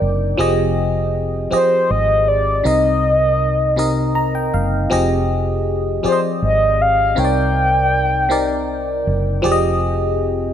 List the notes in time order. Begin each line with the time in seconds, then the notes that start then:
Already playing: C3 C4 D4 D#4 A#4 D5
0.02 F#1
0.38 F1 F3 C4 G4 G#4 D#5
1.51 F3 C4 G4 G#4 C5 D#5, muted fingered electric bass stroke
1.90 G#1 D#5
2.28 D5
2.64 C2 C3 C4 D#4 A#4 D#5
3.76 C3 C4 D#4 A#4 D#5
4.15 A#5
4.35 G5
4.54 F#1 F5
4.90 F1 F3 C4 G4 G#4 D#5
6.03 F3 C4 G4 G#4 C5 D5, muted fingered electric bass stroke
6.12 D#5
6.42 G#1 D#5
6.81 F5
7.15 C2 C3 C4 D#4 A#4 C#5 G5
7.25 D5
8.29 C3 C4 D#4 A#4 D5
9.07 F#1
9.42 F1 F3 C4 G4 G#4 D5
9.52 D#5